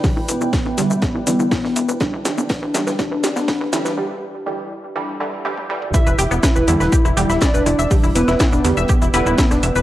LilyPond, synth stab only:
\new Staff \with { instrumentName = "Synth stab" } { \clef bass \time 4/4 \key e \minor \tempo 4 = 122 <d e g>4. <d e g>4 <d e g>4. | <d e g>4. <d e g>8 <d e g>4. <d e g>8 | <d e g>4 <d e g>4 <d e g>8 <d e g>8 <d e g>8 <d e g>8 | <d e g>4. <d e g>4 <d e g>4. |
<d e g>4. <d e g>4 <d e g>4. | }